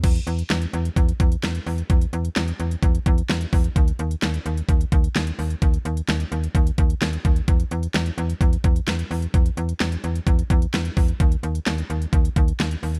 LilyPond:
<<
  \new Staff \with { instrumentName = "FM bass" } { \clef bass \time 4/4 \key e \lydian \tempo 4 = 129 e,8 e,8 e,8 e,8 e,8 e,8 e,8 e,8 | e,8 e,8 e,8 e,8 e,8 e,8 e,8 e,8 | dis,8 dis,8 dis,8 dis,8 dis,8 dis,8 dis,8 dis,8 | dis,8 dis,8 dis,8 dis,8 dis,8 dis,8 dis,8 dis,8 |
e,8 e,8 e,8 e,8 e,8 e,8 e,8 e,8 | e,8 e,8 e,8 e,8 e,8 e,8 e,8 e,8 | dis,8 dis,8 dis,8 dis,8 dis,8 dis,8 dis,8 dis,8 | }
  \new DrumStaff \with { instrumentName = "Drums" } \drummode { \time 4/4 <cymc hh bd>16 hh16 hh16 hh16 <hc hh sn>16 hh16 hh16 hh16 <hh bd>16 hh16 <hh bd>16 hh16 <hc hh sn>16 hh16 hho16 hh16 | <hh bd>16 hh16 hh16 hh16 <hc hh sn>16 hh16 hh16 hh16 <hh bd>16 hh16 <hh bd>16 hh16 <hc hh sn>16 hh16 <hho bd>16 hh16 | <hh bd>16 hh16 hh16 hh16 <hc hh sn>16 hh16 hh16 hh16 <hh bd>16 hh16 <hh bd>16 hh16 <hc hh sn>16 hh16 hho16 hh16 | <hh bd>16 hh16 hh16 hh16 <hc hh sn>16 hh16 hh16 hh16 <hh bd>16 hh16 <hh bd>16 hh16 <hc hh sn>16 hh16 <hh bd>16 hh16 |
<hh bd>16 hh16 hh16 hh16 <hc hh sn>16 hh16 hh16 hh16 <hh bd>16 hh16 <hh bd>16 hh16 <hc hh sn>16 hh16 hho16 hh16 | <hh bd>16 hh16 hh16 hh16 <hc hh sn>16 hh16 hh16 hh16 <hh bd>16 hh16 <hh bd>16 hh16 <hc hh sn>16 hh16 <hho bd>16 hh16 | <hh bd>16 hh16 hh16 hh16 <hc hh sn>16 hh16 hh16 hh16 <hh bd>16 hh16 <hh bd>16 hh16 <hc hh sn>16 hh16 hho16 hh16 | }
>>